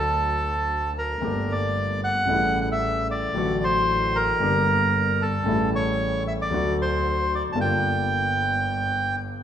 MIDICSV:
0, 0, Header, 1, 4, 480
1, 0, Start_track
1, 0, Key_signature, -2, "minor"
1, 0, Tempo, 530504
1, 1120, Time_signature, 4, 2, 24, 8
1, 8533, End_track
2, 0, Start_track
2, 0, Title_t, "Bandoneon"
2, 0, Program_c, 0, 23
2, 0, Note_on_c, 0, 69, 79
2, 842, Note_off_c, 0, 69, 0
2, 888, Note_on_c, 0, 70, 64
2, 1374, Note_on_c, 0, 74, 79
2, 1379, Note_off_c, 0, 70, 0
2, 1815, Note_off_c, 0, 74, 0
2, 1847, Note_on_c, 0, 78, 87
2, 2350, Note_off_c, 0, 78, 0
2, 2364, Note_on_c, 0, 78, 51
2, 2434, Note_off_c, 0, 78, 0
2, 2460, Note_on_c, 0, 76, 85
2, 2783, Note_off_c, 0, 76, 0
2, 2814, Note_on_c, 0, 74, 71
2, 3294, Note_on_c, 0, 72, 87
2, 3297, Note_off_c, 0, 74, 0
2, 3761, Note_on_c, 0, 70, 89
2, 3775, Note_off_c, 0, 72, 0
2, 4723, Note_on_c, 0, 69, 73
2, 4737, Note_off_c, 0, 70, 0
2, 5158, Note_off_c, 0, 69, 0
2, 5205, Note_on_c, 0, 73, 84
2, 5640, Note_off_c, 0, 73, 0
2, 5678, Note_on_c, 0, 76, 74
2, 5728, Note_off_c, 0, 76, 0
2, 5806, Note_on_c, 0, 74, 84
2, 6128, Note_off_c, 0, 74, 0
2, 6167, Note_on_c, 0, 72, 81
2, 6647, Note_off_c, 0, 72, 0
2, 6650, Note_on_c, 0, 74, 59
2, 6722, Note_off_c, 0, 74, 0
2, 6807, Note_on_c, 0, 81, 66
2, 6864, Note_off_c, 0, 81, 0
2, 6885, Note_on_c, 0, 79, 89
2, 8286, Note_off_c, 0, 79, 0
2, 8533, End_track
3, 0, Start_track
3, 0, Title_t, "Grand piano"
3, 0, Program_c, 1, 0
3, 0, Note_on_c, 1, 38, 53
3, 0, Note_on_c, 1, 50, 54
3, 0, Note_on_c, 1, 54, 40
3, 0, Note_on_c, 1, 66, 52
3, 1021, Note_off_c, 1, 54, 0
3, 1024, Note_off_c, 1, 38, 0
3, 1028, Note_off_c, 1, 50, 0
3, 1034, Note_off_c, 1, 66, 0
3, 1093, Note_on_c, 1, 50, 43
3, 1100, Note_on_c, 1, 57, 43
3, 1103, Note_on_c, 1, 43, 55
3, 1110, Note_on_c, 1, 31, 51
3, 1114, Note_on_c, 1, 58, 41
3, 1124, Note_on_c, 1, 67, 52
3, 2020, Note_off_c, 1, 50, 0
3, 2024, Note_off_c, 1, 57, 0
3, 2025, Note_off_c, 1, 43, 0
3, 2028, Note_off_c, 1, 31, 0
3, 2030, Note_off_c, 1, 58, 0
3, 2035, Note_off_c, 1, 67, 0
3, 2043, Note_on_c, 1, 49, 50
3, 2053, Note_on_c, 1, 55, 47
3, 2060, Note_on_c, 1, 45, 56
3, 2063, Note_on_c, 1, 33, 52
3, 2067, Note_on_c, 1, 57, 48
3, 2079, Note_on_c, 1, 64, 53
3, 2969, Note_off_c, 1, 49, 0
3, 2974, Note_off_c, 1, 55, 0
3, 2978, Note_off_c, 1, 45, 0
3, 2979, Note_off_c, 1, 33, 0
3, 2981, Note_off_c, 1, 57, 0
3, 2987, Note_off_c, 1, 64, 0
3, 3016, Note_on_c, 1, 50, 50
3, 3024, Note_on_c, 1, 54, 46
3, 3031, Note_on_c, 1, 45, 51
3, 3032, Note_on_c, 1, 33, 58
3, 3040, Note_on_c, 1, 57, 48
3, 3056, Note_on_c, 1, 66, 55
3, 3932, Note_off_c, 1, 50, 0
3, 3936, Note_off_c, 1, 54, 0
3, 3939, Note_off_c, 1, 45, 0
3, 3940, Note_off_c, 1, 33, 0
3, 3944, Note_off_c, 1, 57, 0
3, 3952, Note_off_c, 1, 66, 0
3, 3969, Note_on_c, 1, 50, 51
3, 3982, Note_on_c, 1, 55, 43
3, 3990, Note_on_c, 1, 31, 56
3, 3993, Note_on_c, 1, 43, 58
3, 3997, Note_on_c, 1, 58, 43
3, 4009, Note_on_c, 1, 67, 50
3, 4885, Note_off_c, 1, 50, 0
3, 4891, Note_off_c, 1, 55, 0
3, 4896, Note_off_c, 1, 31, 0
3, 4897, Note_off_c, 1, 43, 0
3, 4899, Note_off_c, 1, 58, 0
3, 4905, Note_off_c, 1, 67, 0
3, 4922, Note_on_c, 1, 49, 51
3, 4934, Note_on_c, 1, 55, 49
3, 4939, Note_on_c, 1, 45, 64
3, 4942, Note_on_c, 1, 33, 57
3, 4949, Note_on_c, 1, 57, 46
3, 4960, Note_on_c, 1, 64, 55
3, 5842, Note_off_c, 1, 49, 0
3, 5848, Note_off_c, 1, 55, 0
3, 5850, Note_off_c, 1, 45, 0
3, 5852, Note_off_c, 1, 33, 0
3, 5856, Note_off_c, 1, 57, 0
3, 5861, Note_off_c, 1, 64, 0
3, 5881, Note_on_c, 1, 50, 61
3, 5889, Note_on_c, 1, 54, 46
3, 5894, Note_on_c, 1, 38, 55
3, 5901, Note_on_c, 1, 57, 46
3, 5917, Note_on_c, 1, 66, 53
3, 6806, Note_off_c, 1, 54, 0
3, 6808, Note_off_c, 1, 38, 0
3, 6808, Note_off_c, 1, 50, 0
3, 6812, Note_off_c, 1, 57, 0
3, 6820, Note_off_c, 1, 66, 0
3, 6821, Note_on_c, 1, 50, 45
3, 6834, Note_on_c, 1, 55, 47
3, 6839, Note_on_c, 1, 43, 57
3, 6843, Note_on_c, 1, 31, 54
3, 6849, Note_on_c, 1, 58, 43
3, 6860, Note_on_c, 1, 65, 52
3, 8533, Note_off_c, 1, 31, 0
3, 8533, Note_off_c, 1, 43, 0
3, 8533, Note_off_c, 1, 50, 0
3, 8533, Note_off_c, 1, 55, 0
3, 8533, Note_off_c, 1, 58, 0
3, 8533, Note_off_c, 1, 65, 0
3, 8533, End_track
4, 0, Start_track
4, 0, Title_t, "Double bass"
4, 0, Program_c, 2, 43
4, 0, Note_on_c, 2, 38, 59
4, 1026, Note_off_c, 2, 38, 0
4, 1114, Note_on_c, 2, 31, 59
4, 2030, Note_off_c, 2, 31, 0
4, 2072, Note_on_c, 2, 33, 62
4, 2984, Note_off_c, 2, 33, 0
4, 3018, Note_on_c, 2, 33, 68
4, 3933, Note_off_c, 2, 33, 0
4, 3983, Note_on_c, 2, 31, 66
4, 4892, Note_off_c, 2, 31, 0
4, 4944, Note_on_c, 2, 33, 65
4, 5853, Note_off_c, 2, 33, 0
4, 5905, Note_on_c, 2, 38, 69
4, 6814, Note_off_c, 2, 38, 0
4, 6854, Note_on_c, 2, 31, 61
4, 8533, Note_off_c, 2, 31, 0
4, 8533, End_track
0, 0, End_of_file